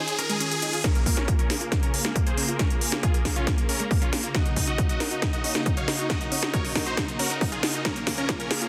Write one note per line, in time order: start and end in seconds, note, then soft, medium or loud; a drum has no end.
0.00 0.81 D#3 medium
0.00 0.81 C#4 medium
0.00 0.80 F4 medium
0.00 0.80 G#4 medium
0.00 riser medium
0.07 0.17 G#4 medium
0.07 closed hi-hat medium
0.18 0.23 C#4 medium
0.18 0.28 A#4 medium
0.18 closed hi-hat medium
0.29 0.40 G#3 medium
0.29 0.39 G#4 medium
0.29 closed hi-hat medium
0.40 0.45 C#4 medium
0.40 0.50 G#4 medium
0.40 closed hi-hat medium
0.51 0.61 G#4 loud
0.51 closed hi-hat medium
0.62 0.73 D#4 medium
0.62 0.72 G#4 medium
0.62 closed hi-hat medium
0.73 0.84 F4 medium
0.73 0.83 G#4 medium
0.73 closed hi-hat medium
0.84 8.69 C#3 medium
0.84 8.69 A#3 medium
0.84 0.94 C#4 medium
0.84 4.31 F4 medium
0.84 4.31 G#4 medium
0.84 0.94 A#4 medium
0.84 kick loud
0.84 snare soft
0.84 closed hi-hat medium
0.95 1.05 A#3 medium
0.95 closed hi-hat medium
1.06 1.10 A#3 medium
1.06 1.16 A#3 medium
1.06 kick medium
1.06 open hi-hat loud
1.17 1.27 C#4 medium
1.17 1.27 A#4 medium
1.17 snare soft
1.17 closed hi-hat medium
1.28 1.37 A#3 medium
1.28 1.38 F4 loud
1.28 kick loud
1.28 closed hi-hat medium
1.39 1.48 C#4 medium
1.39 1.48 A#4 medium
1.39 closed hi-hat medium
1.50 1.59 A#3 medium
1.50 1.60 G#4 medium
1.50 snare soft
1.50 open hi-hat loud
1.61 1.70 A#3 medium
1.61 1.71 F4 medium
1.61 closed hi-hat medium
1.72 1.81 A#3 medium
1.72 1.79 C#4 medium
1.72 kick loud
1.72 snare soft
1.72 closed hi-hat medium
1.83 1.92 C#4 medium
1.83 1.92 A#4 medium
1.83 closed hi-hat medium
1.94 2.03 A#3 medium
1.94 1.98 A#3 medium
1.94 open hi-hat loud
2.05 2.15 G#3 medium
2.05 2.14 A#3 medium
2.05 snare soft
2.05 closed hi-hat medium
2.16 2.25 A#3 medium
2.16 kick loud
2.16 closed hi-hat medium
2.27 2.36 G#4 medium
2.27 2.36 C5 medium
2.27 closed hi-hat medium
2.37 2.47 A#3 medium
2.37 2.48 C#4 medium
2.37 open hi-hat loud
2.48 2.58 A#3 medium
2.48 2.59 F4 medium
2.48 closed hi-hat medium
2.59 2.64 G#3 loud
2.59 2.69 C#4 medium
2.59 2.69 A#4 medium
2.59 kick loud
2.59 snare medium
2.59 closed hi-hat medium
2.70 2.80 A#3 medium
2.70 closed hi-hat medium
2.81 2.86 A#3 medium
2.81 2.91 A#3 medium
2.81 open hi-hat loud
2.92 3.02 A#3 medium
2.92 3.03 C#4 medium
2.92 snare soft
2.92 closed hi-hat medium
3.03 3.13 F4 medium
3.03 3.14 F4 loud
3.03 3.13 G#4 medium
3.03 kick loud
3.03 closed hi-hat medium
3.14 3.24 A#3 medium
3.14 closed hi-hat medium
3.25 3.35 A#3 medium
3.25 3.36 G#4 medium
3.25 kick medium
3.25 snare medium
3.25 open hi-hat loud
3.36 3.46 C#4 medium
3.36 3.46 F4 medium
3.36 3.47 F4 medium
3.36 closed hi-hat medium
3.47 3.56 A#3 medium
3.47 3.54 C#4 medium
3.47 kick loud
3.47 snare medium
3.47 closed hi-hat medium
3.58 3.67 A#3 medium
3.58 closed hi-hat medium
3.69 3.73 A#3 medium
3.69 3.78 C#4 medium
3.69 3.78 A#4 loud
3.69 open hi-hat loud
3.80 3.90 G#3 medium
3.80 3.89 A#3 medium
3.80 closed hi-hat medium
3.91 4.00 A#3 medium
3.91 3.95 A#3 medium
3.91 kick loud
3.91 open hi-hat medium
4.02 4.11 C#4 medium
4.02 4.11 F4 medium
4.02 closed hi-hat medium
4.13 4.22 A#3 medium
4.13 4.23 C#4 medium
4.13 snare medium
4.13 open hi-hat loud
4.24 4.33 A#3 medium
4.24 4.34 F4 medium
4.24 closed hi-hat medium
4.35 4.39 A#3 loud
4.35 7.81 D#4 medium
4.35 4.44 F#4 medium
4.35 7.82 F#4 medium
4.35 4.44 D#5 medium
4.35 kick loud
4.35 snare medium
4.35 closed hi-hat medium
4.46 4.55 D#4 medium
4.46 closed hi-hat soft
4.56 4.61 C#4 medium
4.56 4.66 D#4 medium
4.56 kick medium
4.56 open hi-hat loud
4.67 4.78 D#4 medium
4.67 4.77 F#4 medium
4.67 4.77 D#5 medium
4.67 closed hi-hat soft
4.78 4.88 D#4 medium
4.78 4.89 F#4 loud
4.78 kick loud
4.78 closed hi-hat medium
4.89 4.99 F#4 medium
4.89 4.99 D#5 medium
4.89 closed hi-hat medium
5.00 5.10 D#4 medium
5.00 5.11 A#4 medium
5.00 snare medium
5.00 open hi-hat loud
5.11 5.21 D#4 medium
5.11 5.22 F#4 medium
5.11 closed hi-hat soft
5.22 5.29 D#4 medium
5.22 5.32 D#4 medium
5.22 kick loud
5.22 snare medium
5.22 closed hi-hat medium
5.33 5.43 F#4 medium
5.33 5.43 D#5 medium
5.33 closed hi-hat medium
5.44 5.48 C#4 medium
5.44 5.54 D#4 medium
5.44 open hi-hat loud
5.55 5.65 A#3 medium
5.55 5.65 D#4 medium
5.55 snare medium
5.66 5.70 C#4 medium
5.66 5.75 D#4 medium
5.66 kick loud
5.66 closed hi-hat medium
5.77 5.86 C#5 medium
5.77 5.86 F5 medium
5.77 closed hi-hat soft
5.88 5.98 D#4 medium
5.88 5.97 D#4 medium
5.88 snare medium
5.88 open hi-hat loud
5.99 6.08 D#4 medium
5.99 6.09 F#4 medium
5.99 closed hi-hat medium
6.10 6.14 A#3 loud
6.10 6.19 F#4 medium
6.10 6.19 D#5 medium
6.10 kick loud
6.10 snare medium
6.10 closed hi-hat medium
6.21 6.30 D#4 medium
6.21 closed hi-hat soft
6.32 6.36 C#4 medium
6.32 6.41 D#4 medium
6.32 open hi-hat loud
6.43 6.52 D#4 medium
6.43 6.53 D#4 medium
6.43 snare medium
6.43 closed hi-hat soft
6.54 6.64 F#4 loud
6.54 6.63 A#4 medium
6.54 6.63 C#5 medium
6.54 kick loud
6.54 closed hi-hat medium
6.65 6.74 D#4 medium
6.65 open hi-hat medium
6.75 6.85 D#4 medium
6.75 6.86 A#4 medium
6.75 kick medium
6.75 snare medium
6.75 open hi-hat loud
6.86 6.96 D#4 medium
6.86 6.97 F#4 medium
6.86 6.96 C5 medium
6.86 closed hi-hat medium
6.97 7.07 D#4 medium
6.97 7.04 D#4 medium
6.97 kick loud
6.97 snare medium
6.97 closed hi-hat medium
7.08 7.18 D#4 medium
7.08 closed hi-hat soft
7.19 7.24 C#4 medium
7.19 7.29 F#4 medium
7.19 7.29 A#4 loud
7.19 open hi-hat loud
7.30 7.41 A#3 medium
7.30 7.40 D#4 medium
7.30 closed hi-hat soft
7.41 7.45 C#4 medium
7.41 7.51 D#4 medium
7.41 kick loud
7.41 open hi-hat medium
7.52 7.62 F4 medium
7.52 7.62 G#4 medium
7.52 closed hi-hat soft
7.63 7.72 D#4 medium
7.63 7.74 D#4 medium
7.63 snare medium
7.63 open hi-hat loud
7.74 7.83 D#4 medium
7.74 7.84 F#4 medium
7.74 closed hi-hat soft
7.85 7.89 G#3 medium
7.85 7.94 C#4 medium
7.85 8.69 F4 medium
7.85 8.69 G#4 medium
7.85 7.94 A#4 medium
7.85 kick loud
7.85 snare medium
7.85 closed hi-hat medium
7.85 riser medium
7.96 8.05 A#3 medium
7.96 closed hi-hat soft
8.07 8.16 A#3 medium
8.07 8.11 A#3 medium
8.07 kick medium
8.07 snare medium
8.07 open hi-hat loud
8.18 8.27 C#4 medium
8.18 8.28 C#4 medium
8.18 8.27 A#4 medium
8.18 closed hi-hat soft
8.29 8.38 A#3 medium
8.29 8.39 F4 medium
8.29 kick loud
8.29 snare medium
8.29 closed hi-hat medium
8.40 8.49 C#4 medium
8.40 8.49 A#4 medium
8.40 closed hi-hat medium
8.51 8.60 A#3 medium
8.51 8.61 G#4 medium
8.51 snare medium
8.51 open hi-hat loud
8.62 8.69 A#3 medium
8.62 8.69 F4 medium
8.62 closed hi-hat medium